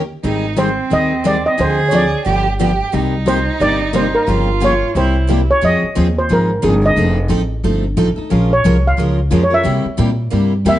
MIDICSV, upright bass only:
0, 0, Header, 1, 3, 480
1, 0, Start_track
1, 0, Key_signature, -3, "minor"
1, 0, Tempo, 336191
1, 350, Time_signature, 4, 2, 24, 8
1, 8030, Key_signature, -4, "minor"
1, 15407, End_track
2, 0, Start_track
2, 0, Title_t, "Upright bass"
2, 0, Program_c, 0, 32
2, 0, Note_on_c, 0, 39, 78
2, 152, Note_off_c, 0, 39, 0
2, 342, Note_on_c, 0, 32, 82
2, 1114, Note_off_c, 0, 32, 0
2, 1307, Note_on_c, 0, 39, 74
2, 2076, Note_off_c, 0, 39, 0
2, 2270, Note_on_c, 0, 38, 86
2, 3038, Note_off_c, 0, 38, 0
2, 3226, Note_on_c, 0, 31, 81
2, 3995, Note_off_c, 0, 31, 0
2, 4192, Note_on_c, 0, 36, 84
2, 4959, Note_off_c, 0, 36, 0
2, 5143, Note_on_c, 0, 31, 76
2, 5914, Note_off_c, 0, 31, 0
2, 6106, Note_on_c, 0, 31, 86
2, 6875, Note_off_c, 0, 31, 0
2, 7069, Note_on_c, 0, 36, 81
2, 7837, Note_off_c, 0, 36, 0
2, 8032, Note_on_c, 0, 41, 82
2, 8296, Note_off_c, 0, 41, 0
2, 8524, Note_on_c, 0, 39, 80
2, 8982, Note_off_c, 0, 39, 0
2, 9008, Note_on_c, 0, 32, 81
2, 9461, Note_off_c, 0, 32, 0
2, 9469, Note_on_c, 0, 31, 88
2, 9935, Note_off_c, 0, 31, 0
2, 9944, Note_on_c, 0, 29, 83
2, 10412, Note_off_c, 0, 29, 0
2, 10426, Note_on_c, 0, 33, 85
2, 10893, Note_off_c, 0, 33, 0
2, 10905, Note_on_c, 0, 31, 82
2, 11369, Note_off_c, 0, 31, 0
2, 11377, Note_on_c, 0, 33, 89
2, 11648, Note_off_c, 0, 33, 0
2, 11875, Note_on_c, 0, 34, 83
2, 12337, Note_off_c, 0, 34, 0
2, 12350, Note_on_c, 0, 36, 85
2, 12815, Note_off_c, 0, 36, 0
2, 12824, Note_on_c, 0, 37, 82
2, 13292, Note_off_c, 0, 37, 0
2, 13301, Note_on_c, 0, 41, 88
2, 13770, Note_off_c, 0, 41, 0
2, 13788, Note_on_c, 0, 48, 83
2, 14053, Note_off_c, 0, 48, 0
2, 14262, Note_on_c, 0, 46, 88
2, 14731, Note_off_c, 0, 46, 0
2, 14744, Note_on_c, 0, 43, 85
2, 15196, Note_off_c, 0, 43, 0
2, 15204, Note_on_c, 0, 40, 89
2, 15407, Note_off_c, 0, 40, 0
2, 15407, End_track
3, 0, Start_track
3, 0, Title_t, "Muted upright bass strokes"
3, 8323, Note_on_c, 9, 29, 40
3, 8466, Note_off_c, 9, 29, 0
3, 11677, Note_on_c, 9, 29, 39
3, 11819, Note_off_c, 9, 29, 0
3, 14068, Note_on_c, 9, 29, 43
3, 14210, Note_off_c, 9, 29, 0
3, 15407, End_track
0, 0, End_of_file